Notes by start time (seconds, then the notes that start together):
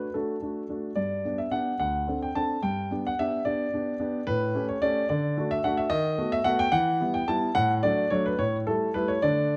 Already playing: B4
0.14 A3 D4 F#4 A4
0.41 A3 D4 F#4
0.69 A3 D4 F#4
0.95 G2 D5
1.25 B3 D4 G4
1.38 E5
1.51 B3 D4 G4 F#5
1.79 D2 F#5
2.08 C4 D4 A4
2.22 G5
2.35 C4 D4 A4 A5
2.63 G2 G5
2.91 B3 D4 G4
3.07 F#5
3.19 B3 D4 G4 E5
3.45 B3 D4 G4 D5
3.74 B3 D4 G4
4.00 B3 D4 G4
4.27 A2 B4
4.55 A3 C#4 G4
4.69 C#5
4.82 A3 C#4 G4 D5
5.09 D3 D5
5.37 A3 D4 F#4
5.51 E5
5.64 A3 D4 F#4 F#5
5.77 E5
5.90 D#3 D#5
6.18 A3 B3 F#4
6.32 E5
6.44 A3 B3 F#4 F#5
6.59 G5
6.72 E3 F#5
7.01 G3 B3 E4
7.14 G5
7.28 G3 B3 E4 A5
7.55 A2 F#5
7.83 F#3 A3 D4 D5
8.10 F#3 A3 D4 C#5
8.26 B4
8.39 A2 C#5
8.67 G3 A3 E4 A4
8.94 G3 A3 E4 B4
9.08 C#5
9.22 D3 A3 D4 D5